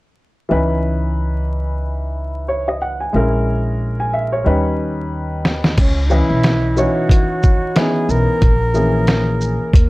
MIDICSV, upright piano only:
0, 0, Header, 1, 2, 480
1, 0, Start_track
1, 0, Key_signature, 4, "minor"
1, 0, Tempo, 659341
1, 368, Time_signature, 4, 2, 24, 8
1, 7204, End_track
2, 0, Start_track
2, 0, Title_t, "Upright piano"
2, 0, Program_c, 0, 0
2, 356, Note_on_c, 0, 52, 62
2, 364, Note_on_c, 0, 61, 53
2, 369, Note_on_c, 0, 63, 54
2, 375, Note_on_c, 0, 71, 71
2, 1808, Note_on_c, 0, 73, 59
2, 1941, Note_off_c, 0, 73, 0
2, 1951, Note_on_c, 0, 75, 54
2, 2044, Note_off_c, 0, 75, 0
2, 2051, Note_on_c, 0, 78, 60
2, 2182, Note_off_c, 0, 78, 0
2, 2187, Note_on_c, 0, 80, 52
2, 2252, Note_off_c, 0, 52, 0
2, 2256, Note_off_c, 0, 61, 0
2, 2259, Note_off_c, 0, 63, 0
2, 2262, Note_off_c, 0, 71, 0
2, 2277, Note_on_c, 0, 56, 61
2, 2284, Note_on_c, 0, 61, 56
2, 2291, Note_on_c, 0, 64, 54
2, 2301, Note_on_c, 0, 70, 68
2, 2415, Note_off_c, 0, 80, 0
2, 2910, Note_on_c, 0, 80, 58
2, 3004, Note_off_c, 0, 80, 0
2, 3009, Note_on_c, 0, 76, 61
2, 3141, Note_off_c, 0, 76, 0
2, 3148, Note_on_c, 0, 73, 61
2, 3223, Note_off_c, 0, 56, 0
2, 3226, Note_off_c, 0, 61, 0
2, 3230, Note_off_c, 0, 64, 0
2, 3235, Note_off_c, 0, 70, 0
2, 3235, Note_on_c, 0, 55, 69
2, 3242, Note_on_c, 0, 61, 63
2, 3249, Note_on_c, 0, 63, 61
2, 3255, Note_on_c, 0, 71, 71
2, 3376, Note_off_c, 0, 73, 0
2, 4182, Note_off_c, 0, 55, 0
2, 4185, Note_off_c, 0, 61, 0
2, 4189, Note_off_c, 0, 63, 0
2, 4192, Note_off_c, 0, 71, 0
2, 4440, Note_on_c, 0, 52, 58
2, 4443, Note_on_c, 0, 61, 56
2, 4449, Note_on_c, 0, 75, 57
2, 4453, Note_on_c, 0, 71, 68
2, 4916, Note_off_c, 0, 52, 0
2, 4922, Note_off_c, 0, 61, 0
2, 4927, Note_on_c, 0, 52, 61
2, 4933, Note_on_c, 0, 61, 54
2, 4934, Note_on_c, 0, 63, 59
2, 4937, Note_on_c, 0, 73, 69
2, 5128, Note_off_c, 0, 75, 0
2, 5130, Note_off_c, 0, 71, 0
2, 5607, Note_off_c, 0, 52, 0
2, 5610, Note_off_c, 0, 61, 0
2, 5611, Note_off_c, 0, 63, 0
2, 5612, Note_off_c, 0, 73, 0
2, 5646, Note_on_c, 0, 52, 60
2, 5649, Note_on_c, 0, 61, 55
2, 5652, Note_on_c, 0, 63, 55
2, 5656, Note_on_c, 0, 59, 66
2, 6127, Note_off_c, 0, 52, 0
2, 6128, Note_off_c, 0, 61, 0
2, 6130, Note_off_c, 0, 63, 0
2, 6131, Note_off_c, 0, 59, 0
2, 6363, Note_on_c, 0, 52, 59
2, 6368, Note_on_c, 0, 61, 55
2, 6369, Note_on_c, 0, 58, 53
2, 6373, Note_on_c, 0, 68, 65
2, 7045, Note_off_c, 0, 52, 0
2, 7048, Note_off_c, 0, 58, 0
2, 7048, Note_off_c, 0, 61, 0
2, 7050, Note_off_c, 0, 68, 0
2, 7204, End_track
0, 0, End_of_file